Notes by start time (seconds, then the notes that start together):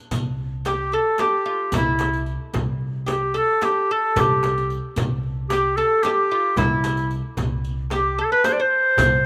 0.11 C2, riq, darbuka dum, frame drum
0.39 darbuka ka
0.65 G4, riq, darbuka tek, frame drum
0.92 A4, riq
1.18 G4, riq, darbuka tek, frame drum
1.46 F4
1.72 C2 E4, riq, darbuka dum, frame drum
1.77 E4
1.99 riq, darbuka tek, frame drum
2.13 riq
2.26 riq
2.54 C2, riq, darbuka dum, frame drum
2.81 darbuka ka
3.06 G4, riq, darbuka tek, frame drum
3.34 A4, riq
3.61 G4, riq, darbuka tek, frame drum
3.91 A4
4.16 C2 G4, riq, darbuka dum, frame drum
4.21 G4
4.43 riq, darbuka tek, frame drum
4.58 riq
4.70 riq
4.96 C2, riq, darbuka dum, frame drum
5.24 darbuka ka
5.49 G4, riq, darbuka tek, frame drum
5.77 A4, riq
6.03 G4, riq, darbuka tek, frame drum
6.31 F4
6.56 C2 E4, riq, darbuka dum, frame drum
6.84 riq, darbuka tek, frame drum
6.97 riq
7.11 riq
7.37 C2, riq, darbuka dum, frame drum
7.64 riq
7.90 G4, riq, darbuka tek, frame drum
8.19 A4
8.32 B4
8.44 C5, riq, darbuka tek, frame drum
8.53 D5
8.60 C5
8.97 C2, riq, darbuka dum, frame drum